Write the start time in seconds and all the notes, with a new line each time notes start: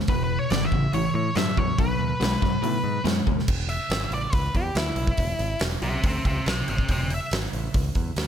0.08 E1 E2 B2 B4, kick, open hi-hat
0.24 B4
0.39 C#5
0.50 G#1 E2 C#3 D5, snare, open hi-hat
0.65 E5
0.72 A1 E2 C#3, kick
0.93 A1 A2 E3 C#5, open hi-hat
1.14 A2 C#5
1.35 G2 A2 F#3 E5, snare, open hi-hat
1.57 E2 A2 F#3 C#5, kick
1.78 B1 B2 F#3 B4, kick, open hi-hat
1.98 D#2
2.20 B1 B2 G#3, snare, open hi-hat
2.42 F#2 B2 G#3, kick, snare
2.62 A2 B2 F#3, open hi-hat
2.84 G#2
3.05 F#2 B2 G#3, snare, open hi-hat
3.27 D#2 B2 G#3, kick
3.39 snare
3.48 E1, kick, crash
3.69 E5, open hi-hat
3.90 G#1, snare, open hi-hat
4.11 A1 D5, open hi-hat
4.33 C#2 B4, kick, open hi-hat
4.55 E2 G4, kick, open hi-hat
4.75 D2 E4, snare, open hi-hat
4.96 B1, open hi-hat
5.07 kick
5.17 E1, kick, open hi-hat
5.39 G#1, open hi-hat
5.59 E1, snare, open hi-hat
5.82 B1 G4 E5, open hi-hat
6.04 D2 G4 E5, kick, open hi-hat
6.25 C#2 G4 E5, kick, open hi-hat
6.46 B1 E5 G5, snare, open hi-hat
6.68 G#1 E5 G5, open hi-hat
6.78 kick
6.88 E1 E5 G5, kick, open hi-hat
7.10 E5, open hi-hat
7.31 G#1, snare, open hi-hat
7.53 A1, open hi-hat
7.74 C#2, kick, open hi-hat
7.95 E2, kick, open hi-hat
8.16 D2, snare, open hi-hat